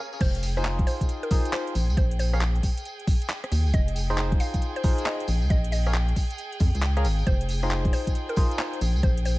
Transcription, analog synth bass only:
0.21 F1
1.75 A#1
1.89 C#2
1.97 A#1
3.52 D#2
3.66 C#2
3.74 F1
5.28 A#1
5.42 C#2
5.50 A#1
6.60 F2
6.75 C#2
7.05 G#1
7.27 F1
8.81 A#1
8.95 C#2
9.03 A#1

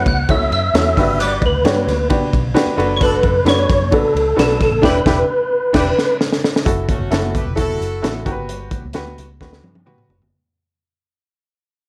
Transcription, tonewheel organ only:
0.08 F#5
0.31 E5
0.53 E5
1.22 D5
1.46 B4
2.97 C#5
3.03 B4
3.48 C#5
3.93 A4
4.40 A4
4.62 A4
4.85 B4

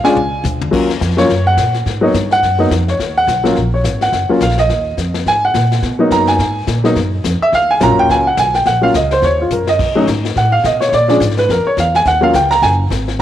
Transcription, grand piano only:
0.04 G#3 C#4 D4 F4 G#5
0.71 F#3 A#3 C#4 F4
1.17 F#3 A#3 C#4 F4 C#5
1.47 F#5
2.01 F#3 A#3 B3 D#4 C#5
2.33 F#5
2.59 F#3 A#3 B3 D#4
2.90 C#5
3.18 F#5
3.44 F#3 A#3 C#4 F4
3.74 C#5
4.02 F#5
4.29 F#3 A#3 C#4 F4
4.42 F5
4.59 D#5
5.28 G#5
5.45 F#5
5.99 F#3 A#3 B3 D#4
6.12 A#5
6.28 G#5
6.84 F#3 A#3 B3 D#4
7.42 E5
7.55 F5
7.71 G#5
7.80 F#3 A#3 C#4 F4 A#5
7.99 G5
8.11 G#5
8.27 F#5
8.39 G#5
8.55 G5
8.67 F#5
8.81 F#3 A#3 C#4 F4 F5
8.96 D#5
9.12 C5
9.25 C#5
9.41 F4
9.53 A#4
9.69 D#5
9.95 F#3 A3 C#4 D#4
10.38 F#5
10.52 F5
10.66 D#5
10.81 C#5
10.89 C#5
10.94 D5
11.08 F3 G#3 C#4 D4
11.39 B4
11.51 A#4
11.67 C#5
11.80 F5
11.96 G#5
12.08 F#5
12.21 F#3 A#3 C#4 F4 F5
12.35 G5
12.51 A#5
12.63 G#5

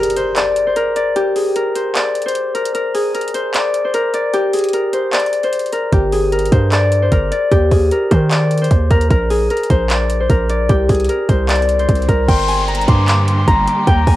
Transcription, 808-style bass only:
5.93 G1
6.52 G2
7.12 G1
7.52 D#2
7.71 D#2
8.11 D#3
8.71 D#2
8.91 D#2
9.10 A#1
9.70 A#1
10.30 A#1
10.69 C2
10.89 C2
11.29 C2
11.89 C2
12.09 C2
12.28 G1
12.88 G2
13.48 G1
13.87 D#2
14.07 D#2

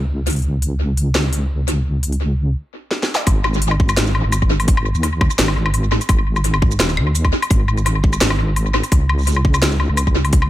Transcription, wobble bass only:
Already playing: C#2
3.27 G#1
4.24 G#1
4.95 D#2
5.39 G#1
5.56 G#1
6.09 G#1
6.80 D#1
6.97 D#2
7.51 G#1
8.21 G#1
8.92 C#2
9.89 C#2

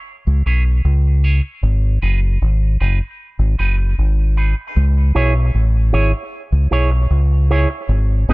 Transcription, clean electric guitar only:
0.46 E4 G#4 C#5
0.65 muted clean electric guitar stroke
1.23 E4 G#4 C#5
1.43 muted clean electric guitar stroke
2.01 D#4 G#4 B4
2.79 D#4 G#4 B4
3.58 D#4 G#4 B4
3.78 muted clean electric guitar stroke
4.37 D#4 G#4 B4
5.15 E4 G#4 C#5
5.93 E4 G#4 C#5
6.71 E4 G#4 C#5
6.91 muted clean electric guitar stroke
7.51 E4 G#4 C#5
7.70 muted clean electric guitar stroke
8.29 B3 D#4 G#4

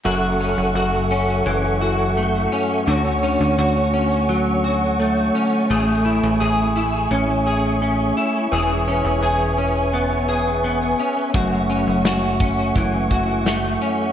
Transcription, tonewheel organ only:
0.05 A4 E5 F#5 C#6
2.86 A3 C#5 C#6
5.70 E5 G#5
8.51 B4 G#5
11.34 A3 F#5 C#6

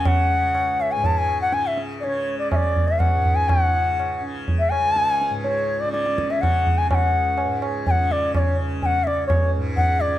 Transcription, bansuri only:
0.07 F#5
0.81 E5
0.92 G#5
1.06 A5
1.18 G#5
1.41 F#5
1.54 G#5
1.67 E5
2.00 C#5 D5
2.39 D5
2.52 D5 E5
2.88 E5
2.99 F#5
3.35 G#5
3.49 F#5
4.59 E5
4.70 G#5
5.44 C#5
5.80 D5
5.92 D5
6.31 E5
6.41 F#5
6.78 G#5
6.91 F#5 G#5
7.87 G#5
7.91 F#5
8.12 D5
8.35 C#5 D5
8.82 F#5 G#5
9.04 D5 E5
9.27 C#5
9.77 F#5
10.01 D5

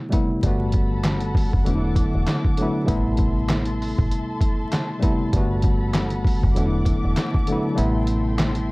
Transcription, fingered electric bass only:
0.43 G1
1.54 F#1
1.66 E1
2.14 E1
2.88 A1
3.99 A1
5.33 G1
6.43 F#1
6.56 E1
7.04 E1
7.78 A1

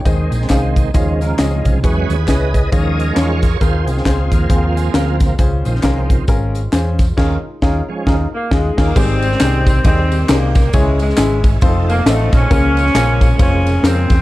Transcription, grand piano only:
Already playing: C#5 G5
0.05 D#3 D#4 G#4 C5 D#5
0.50 D#4 G#4 C5 F5
0.94 D#3 F4 G#4 C#5 D#5
1.39 F4 G#4 C#5 D#5
1.84 E3 E4 G#4 B4 C#5
2.28 E4 G#4 B4 C#5
2.72 D#3 D#4 F4 G#4 C#5
3.16 D#4 F4 G#4 C#5
3.61 D#3 C4 F4 G#4 A#4
4.06 C4 F4 G#4 C5
4.50 C4 F4 G#4 C5
4.77 G#5
4.95 C4 F4 G#4 A#4 F5
5.39 C#3 C#4 F4 G#4 C5
5.84 C#4 F4 G#4 A#4
6.29 C#4 F4 G#4 A#4
6.73 C#4 F4 G#4 C5
7.17 D#3 D#4 F4 G#4 C#5
7.62 D#4 F4 G#4 C#5
8.07 D#4 F4 G#4
8.51 D#4 F4 G#4
8.77 D#4 F4 G#4
8.96 G#2 C4 D#4 G4 G#4 C5
9.40 C4 D#4 G4 G#4 C5
9.85 C4 D#4 G4 G#4 D#5
10.29 C4 D#4 G4 G#4 A#4
10.73 C#3 G#3 C#4 E4 G#4 C#5
11.18 G#3 C#4 E4 G#4 E5
11.62 C4 D#4 F4 A4 C5
12.06 C4 D#4 F4 A4 D#5
12.50 C#3 A#3 C#4 F4 G#4 A#4
12.95 A#3 C#4 F4 G#4 C#5
13.39 A#3 C#4 F4 G#4 C5
13.84 A#3 C#4 F4 G#4 A#4

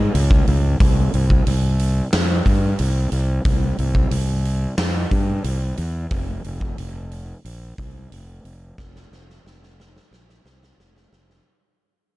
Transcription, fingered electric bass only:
0.14 C#2
0.48 C#2
0.81 C2
1.14 C2
1.47 C2
2.13 F2
2.46 G2
2.80 C2
3.12 C2
3.45 C2
3.79 C2
4.11 C2
4.78 F2
5.11 G2
5.44 C2
5.78 E2
6.11 F1
6.45 F1
6.78 F1
7.45 A#1
7.78 C2
8.12 F1
8.45 F1
8.78 F1
9.11 F1
9.44 F1
10.11 A#1
10.44 C2
10.78 F1
11.12 F1

